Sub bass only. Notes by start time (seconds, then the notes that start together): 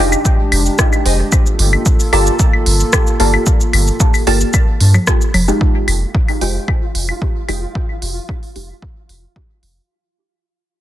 0.00 F1
0.52 F1
1.06 F1
1.59 G1
2.13 G1
2.66 G1
3.20 G1
3.73 G1
4.27 G1
4.81 G2
5.34 F1
5.88 F1
6.41 F1
6.95 F1
7.49 F1
8.02 F1
8.56 F1
9.09 F1
9.63 F1